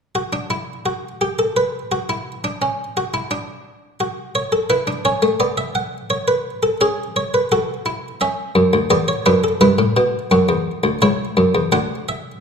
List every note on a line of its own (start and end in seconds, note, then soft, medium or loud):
0.15 0.33 F#4 medium
0.33 0.50 D4 medium
0.50 0.73 E4 medium
0.86 1.08 F#4 medium
1.21 1.39 G4 medium
1.39 1.56 A4 medium
1.57 1.78 B4 medium
1.92 2.09 F#4 medium
2.09 2.31 E4 medium
2.44 2.62 D4 medium
2.62 2.84 C#4 medium
2.97 3.14 F#4 medium
3.14 3.31 E4 medium
3.31 3.99 D4 medium
4.00 4.68 F#4 medium
4.35 4.53 C#5 medium
4.52 4.70 A4 medium
4.70 4.87 E4 medium
4.70 4.92 B4 medium
4.87 5.05 D4 medium
5.05 5.22 C#4 medium
5.05 5.27 C#5 medium
5.22 5.40 A3 medium
5.40 6.77 B3 medium
5.40 5.57 D5 medium
5.58 5.75 E5 medium
5.75 5.97 F#5 medium
6.10 6.28 C#5 medium
6.28 6.50 B4 medium
6.63 6.80 A4 medium
6.81 7.49 C#4 medium
6.81 7.03 G#4 medium
7.16 7.33 C#5 medium
7.34 7.51 B4 medium
7.52 7.73 F#4 medium
7.52 8.19 A4 medium
7.86 8.08 E4 medium
8.21 8.89 C#4 medium
8.21 8.89 E5 medium
8.55 8.73 F#2 medium
8.73 8.90 D2 medium
8.90 9.12 E2 medium
8.90 9.12 B3 medium
8.90 9.08 D5 medium
9.08 9.25 C#5 medium
9.26 9.48 F#2 medium
9.26 9.48 D4 medium
9.26 9.43 B4 medium
9.44 9.61 A4 medium
9.61 9.78 G2 medium
9.61 10.29 E4 medium
9.61 10.98 B4 medium
9.79 9.96 A2 medium
9.97 10.18 B2 medium
10.31 10.48 F#2 medium
10.31 11.00 F#4 medium
10.49 10.71 E2 medium
10.84 11.01 D2 medium
11.02 11.24 C#2 medium
11.02 11.71 E4 medium
11.02 11.71 C#5 medium
11.37 11.54 F#2 medium
11.55 11.72 E2 medium
11.72 12.40 D2 medium
11.72 12.40 D4 medium
11.72 11.95 F#5 medium
12.09 12.31 E5 medium